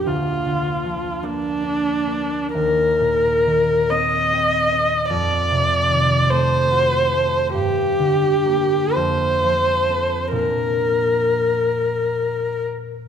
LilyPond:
<<
  \new Staff \with { instrumentName = "Viola" } { \time 6/8 \key bes \major \tempo 4. = 45 f'4. d'4. | bes'4. ees''4. | d''4. c''4. | g'4. c''4. |
bes'2~ bes'8 r8 | }
  \new Staff \with { instrumentName = "Harp" } { \time 6/8 \key bes \major <d, f bes d'>8 d8 f8 bes8 d'8 bes8 | ees,8 bes,8 ees8 c'8 g'8 c'8 | f,8 c8 ees8 a8 ges'8 a8 | g,8 d8 <bes g'>8 f,8 f8 <c' a'>8 |
<bes, f d' bes'>2. | }
>>